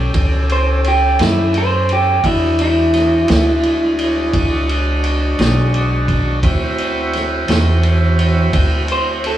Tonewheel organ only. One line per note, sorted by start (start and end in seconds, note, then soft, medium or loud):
0.00 2.20 C#4 medium
0.00 2.19 G4 medium
0.00 2.20 A4 medium
2.23 6.39 G#3 medium
2.23 6.39 D4 medium
2.23 6.40 F#4 medium
6.44 9.38 C4 medium
6.44 9.38 E4 medium
6.44 9.38 F#4 medium